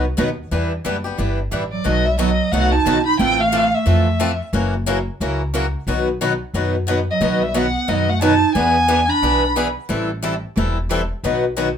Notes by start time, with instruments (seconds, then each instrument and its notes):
Already playing: upright bass C2
0.18 upright bass D#2, steel-string acoustic guitar B2 D#3 F#3 B3 D#4 F#4 B4
0.51 upright bass E2, steel-string acoustic guitar E3 G3 B3 D4 E4 G4 B4
0.84 upright bass F#1, steel-string acoustic guitar E3 G3 B3 D4 E4 G4 B4
1.04 steel-string acoustic guitar B3 D4 G4
1.17 upright bass G1, steel-string acoustic guitar E3 G3 B3 D4 E4 G4 B4
1.51 upright bass A1, steel-string acoustic guitar E3 G3 B3 D4 E4 G4 B4
1.72 clarinet F#3, violin D5
1.85 upright bass B1, steel-string acoustic guitar B2 D#3 F#3 A3 B3 D#4 F#4 A4, clarinet F#3, violin D#5
2.05 clarinet G3, violin E5
2.18 steel-string acoustic guitar B2 D#3 F#3 A3 B3 D#4 F#4 A4, clarinet F#3, violin D#5
2.52 upright bass C2, steel-string acoustic guitar B2 D#3 F#3 A3 B3 D#4 F#4 A4, clarinet A3, violin F#5
2.72 clarinet D#4, violin A5
2.85 upright bass B1, steel-string acoustic guitar B2 D#3 F#3 A3 B3 D#4 F#4 A4
3.05 clarinet D#4, violin B5
3.19 upright bass A1, steel-string acoustic guitar E3 A3 C4 F4 A4, clarinet C4, violin G5
3.38 clarinet A3, violin F5
3.53 steel-string acoustic guitar E3 A3 C4 F4 A4
3.73 clarinet A3, violin E5
3.86 upright bass F2, steel-string acoustic guitar E3 A3 C4 F4 A4
4.19 steel-string acoustic guitar E3 A3 C4 F4 A4
4.53 upright bass F#1, steel-string acoustic guitar C#3 E3 F#3 A#3 C#4 E4 F#4 A#4
4.86 steel-string acoustic guitar C#3 E3 F#3 A#3 C#4 E4 F#4 A#4
5.20 upright bass C#2, steel-string acoustic guitar C#3 E3 F#3 A#3 C#4 E4 F#4 A#4
5.54 steel-string acoustic guitar C#3 E3 F#3 A#3 C#4 E4 F#4 A#4
5.87 upright bass B1, steel-string acoustic guitar B2 D#3 F#3 B3 D#4 F#4 B4
6.21 steel-string acoustic guitar B2 D#3 F#3 B3 D#4 F#4 B4
6.54 upright bass F#2, steel-string acoustic guitar B2 D#3 F#3 B3 D#4 F#4 B4
6.88 steel-string acoustic guitar B2 D#3 F#3 B3 D#4 F#4 B4
7.09 clarinet F#3, violin D#5
7.21 upright bass B1, steel-string acoustic guitar B2 D#3 F#3 B3 D#4 F#4 B4
7.43 clarinet G3, violin E5
7.54 steel-string acoustic guitar B2 D#3 F#3 B3 D#4 F#4 B4, clarinet B3, violin F#5
7.88 upright bass F#2, steel-string acoustic guitar B2 D#3 F#3 B3 D#4 F#4 B4, clarinet F#3, violin D#5
8.09 clarinet A3, violin F#5
8.21 steel-string acoustic guitar B2 D#3 F#3 B3 D#4 F#4 B4, clarinet D#4, violin A5
8.55 upright bass E2, steel-string acoustic guitar E3 B3 D4 G#4 B4, clarinet B3, violin G#5
8.89 steel-string acoustic guitar E3 B3 D4 G#4 B4
9.08 clarinet D4, violin B5
9.22 upright bass B1, steel-string acoustic guitar E3 B3 D4 G#4 B4
9.56 steel-string acoustic guitar E3 B3 D4 G#4 B4
9.89 upright bass A1, steel-string acoustic guitar E3 G3 C4 E4 A4
10.23 steel-string acoustic guitar E3 G3 C4 E4 A4
10.56 upright bass E1, steel-string acoustic guitar E3 G3 C4 E4 A4
10.89 steel-string acoustic guitar E3 G3 C4 E4 A4
11.24 upright bass B1, steel-string acoustic guitar B2 D#3 F#3 B3 D#4 F#4 B4
11.57 steel-string acoustic guitar B2 D#3 F#3 B3 D#4 F#4 B4